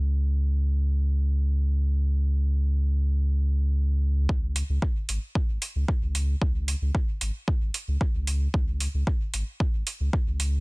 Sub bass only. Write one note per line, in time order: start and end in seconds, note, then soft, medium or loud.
0.00 4.27 C#2 medium
4.29 4.62 C#2 loud
4.69 4.78 C#2 loud
5.09 5.18 G#1 medium
5.49 5.58 G#1 loud
5.75 5.84 C#2 medium
6.02 6.35 C#2 loud
6.42 6.75 C#2 loud
6.82 6.91 C#2 loud
7.21 7.30 G#1 medium
7.61 7.70 G#1 loud
7.88 7.97 C#2 medium
8.14 8.47 C#2 loud
8.54 8.87 C#2 loud
8.94 9.03 C#2 loud
9.34 9.43 G#1 medium
9.74 9.83 G#1 loud
10.00 10.09 C#2 medium
10.27 10.60 C#2 loud